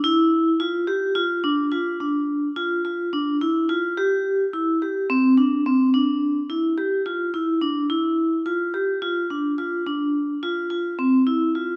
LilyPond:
\new Staff \with { instrumentName = "Vibraphone" } { \time 7/4 \key c \major \tempo 4 = 107 e'4 f'8 g'8 f'8 d'8 f'8 d'4 f'8 f'8 d'8 e'8 f'8 | g'4 e'8 g'8 c'8 d'8 c'8 d'4 e'8 g'8 f'8 e'8 d'8 | e'4 f'8 g'8 f'8 d'8 f'8 d'4 f'8 f'8 c'8 e'8 f'8 | }